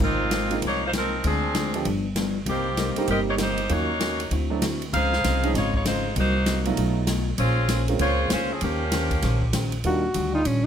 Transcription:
Already playing: G#2 A#3 C4 D#4 F4
0.00 G#1 G#2 F3 A#3 C4 D#4 F4, kick
0.31 G#2 F3 A#3 C4, snare, hi-hat pedal, ride
0.50 G#3 A#3 C4 D#4 F4, ride
0.62 C2 G#2 F3 A#3 C4 D#4 G4, ride
0.66 C#5
0.85 A#3 D#4 F4 C5
0.93 G#2 F3 A#3 C4 D#4 A#4, snare, hi-hat pedal, ride
1.24 D2 D3 F3 G#3 C4 D4 F4 G#4, ride
1.55 D3 G#3 C4 F4, snare, hi-hat pedal, ride
1.74 F3 A3 B3 D4 G4, ride
1.85 G1 G2 F3 B3 D4, ride
2.16 G2 F3 B3 D4, snare, hi-hat pedal, ride
2.46 C2 C3 D#3 G3 A#3 C4 D#4 G4, ride
2.77 C3 G3 A#3 D#4, snare, hi-hat pedal, ride
2.96 G3 A#3 C4 D#4 G4, muted upright bass stroke, ride
3.08 G1 C3 G3 A#3 C4 D#4 G4 A#4 D#5, ride
3.30 A#3 D#4 G4 C#5
3.38 C3 G3 A#3 D#4 G4 C5, snare, hi-hat pedal, ride
3.58 ride
3.69 D#2 D#3 F#3 A#3 C#4 D#4 F4 F#4 C#5, ride
3.99 D#3 A#3 C#4 F#4, snare, hi-hat pedal, ride
4.20 ride
4.31 D2 D3 C4 E4 F#4, ride
4.50 F#3 A3 C4 D4 E4
4.62 D3 C4 E4 F#4, snare, hi-hat pedal, ride
4.82 ride
4.92 C#2 C#3 F3 C4 D#4 G#4 C5 F5, ride
5.13 snare
5.24 C2 C#3 F3 C4 D#4, snare, hi-hat pedal, ride
5.43 F3 G#3 C4 C#4 D#4, ride
5.54 G#1 C#3 F3 G#3 C4 D#4 F4 C#5, snare, ride
5.74 G#3 D#4 F4 C#5, kick
5.85 C#3 F3 G#3 C4 D#4 F4 C5, snare, hi-hat pedal, ride
6.16 C2 C3 F#3 A#3 D#4 F#4 C5, ride
6.46 C3 F#3 A#3 D#4, snare, hi-hat pedal, ride
6.65 F#3 A3 B3 D#4 F4, ride
6.77 B1 B2 A3 D#4 F4, ride
7.07 B2 A3 D#4 F4, snare, hi-hat pedal, ride
7.37 A#1 G#3 A#3 C4 C#4 F4 G#4 C5, ride
7.69 A#3 C#4 G#4 C5, snare, hi-hat pedal, ride
7.88 G#3 A#3 C4 C#4 F4, ride
7.99 C#2 G#3 A#3 C#4 F4 G#4 C5 C#5, ride
8.30 C#2 G#3 A#3 C#4 F4 G#4 C5, snare, hi-hat pedal, ride
8.52 F3 C4 C#4 G#4
8.61 D#2 D#3 F3 A#3 C#4 G4 C5, ride
8.92 D#3 C#4 G4 C5, snare, hi-hat pedal, ride
9.11 kick, ride
9.22 A#1 D#3 C#4 G4 C5, snare, ride
9.42 kick
9.53 D#3 C#4 G4 C5, snare, hi-hat pedal, ride
9.72 ride
9.84 D#2 D#3 G3 A#3 D4 D#4 F4 F#4, ride
10.14 D2 D#3 G3 D4 F4, hi-hat pedal, ride
10.33 D#3 G3 D4 D#4 F4
10.45 A#1 D#3 G3 C#4 D4 F4, ride

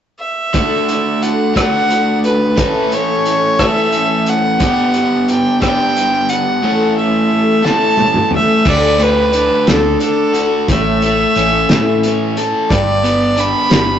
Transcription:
0.20 E5
0.54 D3 A3 D4 F#4 A4, kick, closed hi-hat
0.88 D4 F#4 A4, closed hi-hat
1.21 A3 D4 F#4 A4 F#5, closed hi-hat
1.56 D3 A3 D4 F#4 A4 F#5, kick, cross-stick, closed hi-hat
1.89 A3 D4 F#4 A4, closed hi-hat
2.24 D4 F#4 A4 B4, closed hi-hat
2.57 A2 E3 A3 C#4 E4 A4, kick, closed hi-hat
2.92 A3 C#4 E4 A4 C#5, closed hi-hat
3.25 A3 C#4 E4, closed hi-hat
3.59 A2 E3 A3 C#4 E4 A4 E5, kick, cross-stick, closed hi-hat
3.92 A3 C#4 E4 A4, closed hi-hat
4.26 A3 C#4 E4 A4 F#5, closed hi-hat
4.60 G2 D3 G3 B3 D4 G4 B4, kick, closed hi-hat
4.94 D4 G4 B4, closed hi-hat
5.28 G3 D4 G4 B4 G5, closed hi-hat
5.62 G2 D3 G3 B3 D4 G4 B4 G5, kick, cross-stick, closed hi-hat
5.97 G3 D4 G4 B4, closed hi-hat
6.29 G4 B4 F#5, closed hi-hat
6.33 D4
6.64 A2 E3 A3 C#4 E4 A4
6.97 A3 C#4 E4 E5
7.30 A3 C#4 E4 A4
7.64 A2 E3 A3 C#4 E4 A4 A5, snare
7.97 A3 C#4 E4 A4, high tom
8.14 mid tom
8.31 A3 C#4 E4 A4, mid tom
8.36 E5
8.65 D2 D3 A3 D4 F#4 A4, kick, crash
8.69 D5
8.99 A3 B4, closed hi-hat
9.33 A3 D4 F#4 A4, closed hi-hat
9.67 D2 D3 A3 D4 F#4 A4, snare, closed hi-hat
10.00 D4 A4, closed hi-hat
10.34 D4 F#4 A4, closed hi-hat
10.68 A1 A2 E3 A3 C#4 E4 A4 E5, kick, closed hi-hat
11.02 A3, closed hi-hat
11.35 A1 A3 C#4 E4 A4, closed hi-hat
11.68 A2 E3 A3 C#4 E4 A4, snare, closed hi-hat
12.03 C#4, closed hi-hat
12.37 A3 C#4 E4 A4, closed hi-hat
12.70 G1 G2 G3 D4 G4 B4 D5, kick, closed hi-hat
13.03 B3, closed hi-hat
13.36 G3 D4 G4 B4 B5, closed hi-hat
13.71 G1 G3 D4 G4 B4, snare, closed hi-hat

